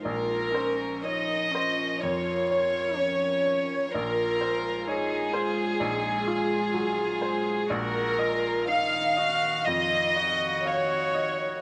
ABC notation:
X:1
M:4/4
L:1/8
Q:1/4=62
K:Bbm
V:1 name="Violin section"
B2 e2 d4 | B2 A6 | B2 f2 e2 d2 |]
V:2 name="Grand piano"
B,,, c d c F,, d d d | B,,, c d c B,,, F G, c | B,,, e f e F,, e f e |]
V:3 name="Ambient pad"
[F,FB]8 | [A,FA]8 | [E,ef]8 |]
V:4 name="Cello"
F D E D F2 D2 | F2 E F E F3 | G F E G F G3 |]